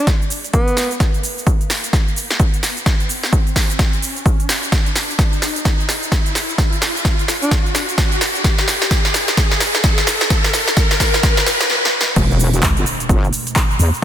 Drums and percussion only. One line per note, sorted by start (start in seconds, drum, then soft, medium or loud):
0.07 kick loud
0.07 snare medium
0.07 closed hi-hat medium
0.07 shaker soft
0.22 shaker soft
0.30 open hi-hat loud
0.30 shaker medium
0.44 closed hi-hat soft
0.44 shaker soft
0.53 kick loud
0.53 closed hi-hat medium
0.53 shaker soft
0.68 closed hi-hat medium
0.68 shaker soft
0.77 snare medium
0.77 open hi-hat medium
0.77 shaker medium
0.91 closed hi-hat soft
0.91 shaker soft
1.00 kick loud
1.00 snare medium
1.00 closed hi-hat medium
1.00 shaker soft
1.14 closed hi-hat soft
1.14 shaker soft
1.23 open hi-hat loud
1.23 shaker medium
1.38 shaker soft
1.47 kick loud
1.47 closed hi-hat medium
1.47 shaker soft
1.61 closed hi-hat soft
1.61 shaker soft
1.70 snare medium
1.70 open hi-hat medium
1.70 shaker medium
1.84 closed hi-hat medium
1.84 shaker soft
1.93 kick loud
1.93 snare medium
1.93 closed hi-hat medium
1.93 shaker soft
2.08 shaker soft
2.16 open hi-hat loud
2.16 shaker medium
2.30 snare medium
2.30 closed hi-hat soft
2.30 shaker soft
2.40 kick loud
2.40 closed hi-hat medium
2.40 shaker soft
2.54 closed hi-hat soft
2.54 shaker soft
2.63 snare medium
2.63 open hi-hat loud
2.63 shaker medium
2.77 closed hi-hat soft
2.77 shaker soft
2.86 kick loud
2.86 snare medium
2.86 closed hi-hat medium
2.86 shaker soft
3.00 closed hi-hat soft
3.00 shaker soft
3.09 open hi-hat loud
3.09 shaker medium
3.23 snare medium
3.23 shaker soft
3.33 kick loud
3.33 closed hi-hat medium
3.33 shaker soft
3.47 closed hi-hat soft
3.47 shaker soft
3.56 kick medium
3.56 snare medium
3.56 open hi-hat loud
3.56 shaker medium
3.70 closed hi-hat soft
3.70 shaker soft
3.79 kick loud
3.79 snare medium
3.79 closed hi-hat medium
3.79 shaker soft
3.93 closed hi-hat soft
3.93 shaker soft
4.02 open hi-hat loud
4.02 shaker medium
4.17 closed hi-hat soft
4.17 shaker soft
4.26 kick loud
4.26 closed hi-hat medium
4.26 shaker soft
4.40 closed hi-hat medium
4.40 shaker soft
4.49 snare medium
4.49 open hi-hat medium
4.49 shaker medium
4.63 closed hi-hat soft
4.63 shaker soft
4.72 kick loud
4.72 snare medium
4.72 closed hi-hat medium
4.72 shaker soft
4.86 closed hi-hat soft
4.86 shaker soft
4.96 snare medium
4.96 open hi-hat loud
4.96 shaker medium
5.10 shaker soft
5.19 kick loud
5.19 snare medium
5.19 closed hi-hat medium
5.19 shaker soft
5.33 closed hi-hat soft
5.33 shaker soft
5.42 snare medium
5.42 open hi-hat medium
5.42 shaker medium
5.56 closed hi-hat medium
5.56 shaker soft
5.65 kick loud
5.65 snare medium
5.65 closed hi-hat medium
5.65 shaker soft
5.80 shaker soft
5.89 snare medium
5.89 open hi-hat loud
5.89 shaker medium
6.03 closed hi-hat soft
6.03 shaker soft
6.12 kick loud
6.12 snare medium
6.12 closed hi-hat medium
6.12 shaker soft
6.26 closed hi-hat medium
6.26 shaker soft
6.35 snare medium
6.35 open hi-hat loud
6.35 shaker medium
6.49 closed hi-hat soft
6.49 shaker soft
6.58 kick loud
6.58 snare medium
6.58 closed hi-hat medium
6.58 shaker soft
6.73 closed hi-hat soft
6.73 shaker soft
6.82 snare medium
6.82 open hi-hat loud
6.82 shaker medium
6.97 shaker soft
7.05 kick loud
7.05 snare medium
7.05 closed hi-hat medium
7.05 shaker soft
7.19 closed hi-hat soft
7.19 shaker soft
7.28 snare medium
7.28 open hi-hat medium
7.28 shaker medium
7.42 closed hi-hat medium
7.42 shaker soft
7.51 kick loud
7.51 snare medium
7.51 closed hi-hat medium
7.51 shaker soft
7.66 shaker soft
7.75 snare medium
7.75 open hi-hat loud
7.75 shaker medium
7.89 closed hi-hat soft
7.89 shaker soft
7.98 kick loud
7.98 snare medium
7.98 closed hi-hat medium
7.98 shaker soft
8.12 closed hi-hat medium
8.12 shaker soft
8.21 snare medium
8.21 open hi-hat medium
8.21 shaker medium
8.35 closed hi-hat soft
8.35 shaker soft
8.44 kick loud
8.44 snare medium
8.44 closed hi-hat medium
8.44 shaker soft
8.59 snare medium
8.59 closed hi-hat soft
8.59 shaker soft
8.68 snare medium
8.68 open hi-hat loud
8.68 shaker medium
8.82 snare medium
8.82 shaker soft
8.91 kick loud
8.91 snare loud
8.91 closed hi-hat medium
8.91 shaker soft
9.05 snare medium
9.05 closed hi-hat soft
9.05 shaker soft
9.14 snare loud
9.14 open hi-hat medium
9.14 shaker medium
9.28 snare medium
9.28 closed hi-hat medium
9.28 shaker soft
9.37 kick loud
9.37 snare loud
9.37 closed hi-hat medium
9.37 shaker soft
9.51 snare medium
9.51 shaker soft
9.60 snare loud
9.60 open hi-hat loud
9.60 shaker medium
9.75 snare medium
9.75 closed hi-hat soft
9.75 shaker soft
9.84 kick loud
9.84 snare loud
9.84 closed hi-hat medium
9.84 shaker soft
9.98 snare medium
9.98 closed hi-hat medium
9.98 shaker soft
10.07 snare loud
10.07 open hi-hat medium
10.07 shaker medium
10.21 snare medium
10.21 closed hi-hat soft
10.21 shaker soft
10.30 kick loud
10.30 snare loud
10.30 closed hi-hat medium
10.30 shaker soft
10.44 snare medium
10.44 closed hi-hat soft
10.44 shaker soft
10.54 snare loud
10.54 open hi-hat loud
10.54 shaker medium
10.68 snare medium
10.68 shaker soft
10.77 kick loud
10.77 snare loud
10.77 closed hi-hat medium
10.77 shaker soft
10.91 snare loud
10.91 closed hi-hat soft
10.91 shaker soft
11.00 kick medium
11.00 snare loud
11.00 open hi-hat medium
11.00 shaker medium
11.14 snare medium
11.14 closed hi-hat medium
11.14 shaker soft
11.23 kick loud
11.23 snare loud
11.23 closed hi-hat medium
11.23 shaker soft
11.37 snare medium
11.37 closed hi-hat soft
11.37 shaker soft
11.46 snare loud
11.46 open hi-hat loud
11.46 shaker medium
11.61 snare loud
11.61 closed hi-hat soft
11.61 shaker soft
11.70 snare medium
11.85 snare medium
12.01 snare loud
12.16 kick loud
12.16 closed hi-hat medium
12.16 crash loud
12.16 shaker soft
12.31 shaker soft
12.40 open hi-hat loud
12.40 shaker medium
12.54 closed hi-hat medium
12.54 shaker soft
12.63 kick loud
12.63 clap loud
12.63 closed hi-hat medium
12.63 shaker soft
12.77 closed hi-hat medium
12.77 shaker soft
12.86 open hi-hat medium
12.86 shaker medium
13.00 closed hi-hat medium
13.00 shaker soft
13.09 kick loud
13.09 closed hi-hat medium
13.09 shaker soft
13.24 shaker soft
13.33 open hi-hat loud
13.33 shaker medium
13.47 closed hi-hat medium
13.47 shaker soft
13.56 kick loud
13.56 clap loud
13.56 closed hi-hat medium
13.56 shaker soft
13.71 shaker soft
13.79 open hi-hat medium
13.79 shaker medium
13.94 shaker soft